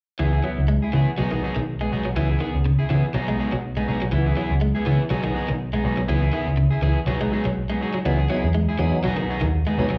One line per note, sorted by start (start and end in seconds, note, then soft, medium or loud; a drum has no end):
0.19 0.40 C#2 medium
0.19 0.38 E3 medium
0.19 0.33 B3 medium
0.19 0.33 E4 medium
0.19 0.31 G#4 medium
0.33 0.43 E4 soft
0.33 0.44 G#4 soft
0.44 0.63 F#3 medium
0.44 0.60 B3 medium
0.44 0.60 E4 medium
0.44 muted clean electric guitar stroke medium
0.58 0.79 C#2 medium
0.68 0.87 G#3 medium
0.82 0.94 E4 soft
0.82 0.93 G#4 soft
0.93 1.05 C#3 medium
0.93 1.12 E3 medium
0.93 1.09 B3 medium
0.93 1.10 E4 medium
0.93 1.10 G#4 medium
1.18 1.30 B1 medium
1.18 1.28 F#3 medium
1.18 1.32 F#3 medium
1.18 1.32 B3 medium
1.18 1.31 D#4 medium
1.18 1.31 G#4 medium
1.31 1.50 D#3 medium
1.31 1.42 B3 soft
1.31 1.43 D#4 soft
1.31 1.43 G#4 medium
1.43 1.58 F#3 medium
1.43 1.59 B3 medium
1.43 1.59 D#4 medium
1.43 1.59 G#4 medium
1.43 muted picked electric bass stroke soft
1.56 1.77 B1 medium
1.56 1.75 D#3 medium
1.81 1.99 G#3 medium
1.81 1.91 B3 soft
1.81 1.92 G#4 soft
1.81 muted picked electric bass stroke soft
1.81 muted clean electric guitar stroke soft
1.92 2.04 B1 medium
1.92 2.07 F#3 medium
1.92 2.08 B3 medium
1.92 2.08 D#4 medium
1.92 2.08 G#4 medium
2.05 2.13 F#3 medium
2.16 2.37 C#2 medium
2.16 2.35 E3 medium
2.16 2.29 B3 medium
2.16 2.29 E4 medium
2.16 2.28 G#4 medium
2.29 2.40 E4 soft
2.29 2.40 G#4 soft
2.40 2.59 D#3 medium
2.40 2.56 B3 medium
2.40 2.57 G#4 medium
2.40 muted clean electric guitar stroke medium
2.55 2.75 C#2 medium
2.66 2.84 C#3 medium
2.79 2.89 E4 soft
2.79 2.89 G#4 soft
2.89 3.02 C#3 medium
2.89 3.09 E3 medium
2.89 3.05 B3 medium
2.89 3.06 E4 medium
2.89 3.06 G#4 medium
3.14 3.26 B1 medium
3.14 3.28 F#3 medium
3.14 3.25 F#3 medium
3.14 3.28 B3 medium
3.14 3.27 D#4 medium
3.14 3.27 G#4 medium
3.28 3.47 G#3 medium
3.28 3.38 B3 soft
3.28 3.38 D#4 soft
3.28 3.39 G#4 medium
3.39 3.55 F#3 medium
3.39 3.55 B3 medium
3.39 3.55 D#4 medium
3.39 3.55 G#4 medium
3.39 muted picked electric bass stroke soft
3.52 3.73 B1 medium
3.52 3.71 F#3 medium
3.77 3.96 G#3 medium
3.77 3.87 B3 soft
3.77 3.87 D#4 soft
3.77 3.87 G#4 soft
3.77 muted picked electric bass stroke soft
3.87 4.00 B1 medium
3.87 4.04 F#3 soft
3.87 4.04 B3 medium
3.87 4.04 D#4 medium
3.87 4.04 G#4 medium
4.02 4.10 F#3 medium
4.12 4.33 C#2 medium
4.12 4.31 E3 medium
4.12 4.26 E3 medium
4.12 4.26 B3 medium
4.12 4.25 E4 medium
4.12 muted clean electric guitar stroke medium
4.26 4.36 B3 soft
4.26 4.36 E4 soft
4.26 4.37 G#4 soft
4.37 4.53 E3 medium
4.37 4.56 F#3 medium
4.37 4.53 B3 medium
4.37 4.53 E4 medium
4.37 4.53 G#4 medium
4.51 4.71 C#2 medium
4.61 4.80 G#3 medium
4.75 4.85 B3 soft
4.75 4.85 E4 soft
4.75 4.85 G#4 medium
4.85 4.98 C#3 medium
4.85 5.02 E3 medium
4.85 5.05 E3 medium
4.85 5.02 B3 medium
4.85 5.02 E4 medium
4.85 5.02 G#4 medium
5.10 5.22 B1 medium
5.10 5.24 F#3 medium
5.10 5.21 F#3 medium
5.10 5.23 B3 medium
5.10 5.23 D#4 medium
5.10 5.22 G#4 medium
5.23 5.43 D#3 medium
5.23 5.33 B3 soft
5.23 5.34 D#4 soft
5.23 5.34 G#4 medium
5.34 5.51 F#3 medium
5.34 5.51 B3 medium
5.34 5.51 D#4 medium
5.34 5.51 G#4 medium
5.34 muted picked electric bass stroke soft
5.49 5.70 B1 medium
5.49 5.67 D#3 medium
5.73 5.92 G#3 medium
5.73 5.84 B3 soft
5.73 5.84 D#4 soft
5.73 5.84 G#4 medium
5.73 muted picked electric bass stroke soft
5.84 5.96 B1 medium
5.84 6.00 F#3 medium
5.84 6.01 B3 medium
5.84 6.01 D#4 medium
5.84 6.01 G#4 medium
5.97 6.06 F#3 medium
6.08 6.30 C#2 medium
6.08 6.28 E3 medium
6.08 6.22 B3 medium
6.08 6.22 E4 medium
6.08 6.21 G#4 medium
6.22 6.33 E4 soft
6.22 6.33 G#4 medium
6.33 6.52 D#3 medium
6.33 6.49 B3 medium
6.33 6.50 E4 medium
6.33 6.50 G#4 medium
6.46 6.67 C#2 medium
6.57 6.76 C#3 medium
6.71 6.82 E4 soft
6.71 6.82 G#4 medium
6.82 6.94 C#2 medium
6.82 7.01 E3 medium
6.82 6.98 B3 medium
6.82 6.99 E4 medium
6.82 6.99 G#4 medium
7.07 7.18 B1 loud
7.07 7.21 F#3 medium
7.07 7.18 F#3 medium
7.07 7.20 B3 medium
7.07 7.20 D#4 medium
7.07 7.19 G#4 medium
7.20 7.40 G#3 medium
7.20 7.31 B3 soft
7.20 7.32 D#4 medium
7.20 7.32 G#4 medium
7.32 7.48 F#3 medium
7.32 7.48 B3 medium
7.32 7.48 D#4 medium
7.32 7.48 G#4 medium
7.32 muted picked electric bass stroke soft
7.45 7.55 B1 medium
7.45 7.64 F#3 medium
7.70 7.89 G#3 medium
7.70 7.82 B3 soft
7.70 7.81 D#4 soft
7.70 7.81 G#4 medium
7.81 7.97 F#3 medium
7.81 7.97 D#4 medium
7.81 7.98 G#4 medium
7.94 8.03 F#3 medium
8.05 8.26 C#2 medium
8.05 8.25 E3 medium
8.05 8.14 F#3 medium
8.05 8.14 B3 medium
8.05 8.19 B3 medium
8.05 8.14 D#4 medium
8.05 8.19 E4 medium
8.05 8.18 G#4 medium
8.19 8.30 G#4 medium
8.19 muted clean electric guitar stroke soft
8.30 8.49 F#3 medium
8.30 8.46 F#3 medium
8.30 8.47 B3 medium
8.30 8.46 B3 medium
8.30 8.46 D#4 medium
8.30 8.47 E4 medium
8.30 8.47 G#4 medium
8.44 8.65 E2 medium
8.54 8.73 G#3 medium
8.69 8.79 E4 soft
8.69 8.80 G#4 medium
8.79 8.91 E2 medium
8.79 8.98 E3 medium
8.79 9.04 F#3 medium
8.79 9.04 B3 medium
8.79 9.04 D#4 medium
8.79 8.96 E4 medium
8.79 8.96 G#4 medium
8.93 muted picked electric bass stroke soft
9.04 9.37 B1 medium
9.04 9.14 F#3 medium
9.04 9.18 F#3 medium
9.04 9.18 B3 medium
9.04 9.18 D#4 medium
9.04 9.17 G#4 medium
9.17 9.36 D#3 medium
9.17 9.29 B3 soft
9.17 9.29 D#4 medium
9.17 9.29 G#4 medium
9.29 9.45 F#3 medium
9.29 9.45 B3 medium
9.29 9.45 D#4 medium
9.29 9.45 G#4 medium
9.41 9.63 D#2 medium
9.41 9.60 D#3 medium
9.67 9.85 G#3 medium
9.67 9.77 B3 soft
9.67 9.78 D#4 soft
9.67 9.78 G#4 medium
9.78 9.89 B1 medium
9.78 9.86 F#3 medium
9.78 9.94 F#3 medium
9.78 9.94 B3 medium
9.78 9.87 B3 medium
9.78 9.94 D#4 medium
9.78 9.87 D#4 medium
9.78 9.94 G#4 medium
9.90 9.98 F#3 medium